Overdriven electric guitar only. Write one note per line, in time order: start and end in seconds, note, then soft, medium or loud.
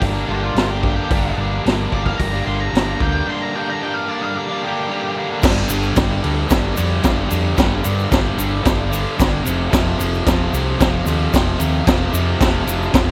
0.00 0.54 G2 medium
0.00 0.13 D3 medium
0.00 0.17 G3 medium
0.00 0.15 A#3 medium
0.00 0.12 D4 medium
0.13 0.30 A#3 medium
0.13 0.31 D4 medium
0.17 0.28 G3 medium
0.27 0.54 D3 medium
0.27 0.56 G3 medium
0.27 0.57 A#3 medium
0.27 0.58 D4 medium
0.54 1.08 G2 medium
0.54 0.80 D3 medium
0.54 0.72 G3 medium
0.54 0.70 A#3 medium
0.58 0.68 D4 medium
0.68 0.82 G3 soft
0.68 0.83 A#3 medium
0.68 0.84 D4 medium
0.81 1.09 D3 medium
0.81 0.98 G3 medium
0.81 0.97 A#3 medium
0.81 0.94 D4 medium
0.95 1.11 A#3 medium
0.95 1.12 D4 medium
0.99 1.10 G3 medium
1.09 1.63 G2 medium
1.09 1.36 D3 medium
1.09 1.39 G3 medium
1.09 1.40 A#3 medium
1.13 1.40 D4 loud
1.37 1.63 D3 medium
1.37 1.55 G3 medium
1.37 1.54 A#3 medium
1.37 1.51 D4 medium
1.51 1.65 G3 medium
1.51 1.66 A#3 medium
1.51 1.67 D4 medium
1.63 2.72 G2 medium
1.63 1.90 D3 medium
1.63 1.92 G3 medium
1.63 1.93 A#3 loud
1.63 1.94 D4 loud
1.91 2.32 D3 medium
1.91 2.08 G3 medium
1.91 2.06 A#3 medium
1.95 2.03 D4 medium
2.04 2.34 A#3 medium
2.04 2.32 D4 medium
2.08 2.35 G3 medium
2.32 2.47 G3 medium
2.32 2.48 A#3 medium
2.32 2.49 D4 medium
2.45 2.72 D3 medium
2.45 2.74 G3 medium
2.45 2.75 A#3 medium
2.45 2.75 D4 medium
2.72 3.25 G2 medium
2.72 2.97 D3 medium
2.72 2.89 G3 medium
2.72 2.87 A#3 loud
2.72 2.85 D4 loud
2.85 3.00 A#3 medium
2.85 3.01 D4 medium
2.89 2.99 G3 medium
2.98 3.26 D3 medium
2.98 3.15 G3 medium
2.98 3.14 A#3 medium
2.98 3.12 D4 medium
3.13 3.27 G3 medium
3.13 3.28 A#3 medium
3.13 3.29 D4 medium
3.26 3.80 G2 medium
3.26 3.53 D3 medium
3.26 3.55 G3 medium
3.26 3.56 A#3 loud
3.30 3.57 D4 medium
3.55 3.82 D3 medium
3.55 3.72 G3 medium
3.55 3.70 A#3 medium
3.59 3.68 D4 medium
3.69 3.83 A#3 medium
3.69 3.84 D4 medium
3.73 3.83 G3 medium
3.82 4.35 G2 medium
3.82 4.06 D3 medium
3.82 4.08 G3 loud
3.82 4.09 A#3 loud
3.82 4.10 D4 loud
4.07 4.48 D3 medium
4.07 4.24 G3 medium
4.07 4.22 A#3 medium
4.07 4.20 D4 medium
4.21 4.51 G3 medium
4.21 4.49 A#3 medium
4.21 4.47 D4 medium
4.48 4.64 A#3 medium
4.48 4.65 D4 medium
4.52 4.63 G3 medium
4.63 4.88 D3 medium
4.63 4.89 G3 medium
4.63 4.90 A#3 medium
4.63 4.91 D4 medium
4.88 5.29 G2 medium
4.88 5.14 D3 medium
4.88 5.06 G3 medium
4.88 5.04 A#3 medium
4.88 5.02 D4 medium
5.03 5.17 A#3 medium
5.03 5.18 D4 medium
5.07 5.16 G3 medium
5.15 5.41 D3 medium
5.15 5.32 G3 medium
5.15 5.31 A#3 medium
5.19 5.28 D4 medium
5.29 5.43 G3 medium
5.29 5.43 A#3 medium
5.29 5.41 D4 medium
5.44 5.70 G2 loud
5.44 5.70 D3 medium
5.44 5.72 G3 loud
5.70 5.96 G2 medium
5.70 5.96 D3 medium
5.70 5.97 G3 medium
5.96 6.21 G2 medium
5.96 6.22 D3 medium
5.96 6.23 G3 medium
6.22 6.47 G2 medium
6.22 6.47 D3 medium
6.22 6.49 G3 loud
6.48 6.74 G2 loud
6.48 6.75 D3 medium
6.48 6.75 G3 loud
6.75 7.01 G2 medium
6.75 7.02 D3 medium
6.75 7.03 G3 loud
7.02 7.28 G2 medium
7.02 7.28 D3 medium
7.02 7.30 G3 medium
7.29 7.54 G2 medium
7.29 7.55 D3 loud
7.29 7.56 G3 medium
7.56 7.82 G2 loud
7.56 7.82 D3 loud
7.56 7.84 G3 loud
7.83 8.09 G2 medium
7.83 8.10 D3 medium
7.83 8.11 G3 medium
8.10 8.36 G2 medium
8.10 8.37 D3 loud
8.10 8.38 G3 loud
8.37 8.62 G2 medium
8.37 8.63 D3 medium
8.37 8.64 G3 medium
8.63 8.89 G2 loud
8.63 8.90 D3 loud
8.63 8.91 G3 loud
8.90 9.16 G2 medium
8.90 9.18 D3 medium
8.90 9.18 G3 loud
9.17 9.44 G2 medium
9.17 9.44 D3 medium
9.17 9.44 G3 medium
9.44 9.70 F2 loud
9.44 9.70 C3 loud
9.44 9.72 F3 loud
9.70 9.98 F2 medium
9.70 9.97 C3 loud
9.70 9.99 F3 loud
9.98 10.25 F2 medium
9.98 10.25 C3 loud
9.98 10.27 F3 medium
10.26 10.52 F2 medium
10.26 10.52 C3 medium
10.26 10.53 F3 loud
10.52 10.78 F2 medium
10.52 10.79 C3 medium
10.52 10.80 F3 loud
10.79 11.04 F2 loud
10.79 11.06 C3 loud
10.79 11.06 F3 loud
11.05 11.31 F2 medium
11.05 11.32 C3 loud
11.05 11.33 F3 loud
11.32 11.58 F2 medium
11.32 11.59 C3 medium
11.32 11.60 F3 medium
11.59 11.83 F2 medium
11.59 11.85 C3 medium
11.59 11.85 F3 loud
11.84 12.11 F2 medium
11.84 12.12 C3 medium
11.84 12.12 F3 loud
12.12 12.38 F2 medium
12.12 12.39 C3 loud
12.12 12.40 F3 medium
12.39 12.64 F2 medium
12.39 12.65 C3 medium
12.39 12.65 F3 loud
12.65 12.91 F2 medium
12.65 12.91 C3 loud
12.65 12.92 F3 medium
12.92 13.11 F2 medium
12.92 13.11 C3 loud
12.92 13.11 F3 loud